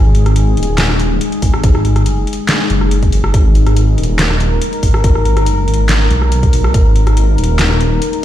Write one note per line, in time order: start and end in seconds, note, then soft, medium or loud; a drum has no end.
0.00 0.56 G#1 loud
0.00 8.25 G#3 medium
0.00 8.25 D#4 medium
0.00 3.32 G#4 medium
0.15 closed hi-hat medium
0.26 cross-stick medium
0.26 closed hi-hat soft
0.36 closed hi-hat medium
0.57 1.20 D#1 loud
0.57 closed hi-hat soft
0.63 closed hi-hat medium
0.78 snare loud
0.78 clap medium
0.78 closed hi-hat medium
0.90 cross-stick medium
1.00 closed hi-hat medium
1.21 closed hi-hat medium
1.32 closed hi-hat soft
1.42 2.01 G#1 loud
1.42 kick medium
1.42 open hi-hat medium
1.54 cross-stick medium
1.64 kick loud
1.64 closed hi-hat medium
1.75 cross-stick medium
1.85 closed hi-hat medium
1.96 cross-stick medium
1.96 closed hi-hat soft
2.01 2.26 G1 loud
2.06 closed hi-hat medium
2.27 closed hi-hat soft
2.33 closed hi-hat medium
2.49 snare loud
2.49 clap medium
2.49 closed hi-hat medium
2.70 3.32 F#1 loud
2.70 closed hi-hat medium
2.81 cross-stick medium
2.91 closed hi-hat medium
3.03 kick medium
3.03 closed hi-hat soft
3.12 open hi-hat medium
3.24 cross-stick medium
3.34 3.96 G#1 medium
3.34 8.25 A#4 medium
3.34 kick loud
3.34 closed hi-hat medium
3.55 closed hi-hat medium
3.67 cross-stick medium
3.67 closed hi-hat soft
3.77 closed hi-hat medium
3.98 4.60 D#1 medium
3.98 closed hi-hat soft
4.03 closed hi-hat medium
4.19 snare loud
4.19 clap medium
4.19 closed hi-hat medium
4.30 cross-stick medium
4.40 closed hi-hat medium
4.62 closed hi-hat medium
4.73 closed hi-hat soft
4.83 5.42 G#1 loud
4.83 kick medium
4.83 open hi-hat medium
4.94 cross-stick medium
5.04 kick loud
5.04 closed hi-hat medium
5.15 cross-stick medium
5.25 closed hi-hat medium
5.37 cross-stick medium
5.37 closed hi-hat soft
5.42 5.66 G1 loud
5.46 closed hi-hat medium
5.68 6.09 G#1 medium
5.68 closed hi-hat soft
5.74 closed hi-hat medium
5.89 snare loud
5.89 clap medium
5.89 closed hi-hat medium
6.11 6.73 B1 loud
6.11 closed hi-hat medium
6.22 cross-stick medium
6.32 closed hi-hat medium
6.43 kick medium
6.43 closed hi-hat soft
6.53 open hi-hat medium
6.64 cross-stick medium
6.74 7.37 G#1 loud
6.74 kick loud
6.74 closed hi-hat medium
6.96 closed hi-hat medium
7.07 cross-stick medium
7.07 closed hi-hat soft
7.17 closed hi-hat medium
7.38 8.00 D#1 loud
7.38 closed hi-hat soft
7.44 closed hi-hat medium
7.59 snare loud
7.59 clap medium
7.59 closed hi-hat medium
7.70 cross-stick medium
7.81 closed hi-hat medium
8.02 closed hi-hat medium
8.13 closed hi-hat soft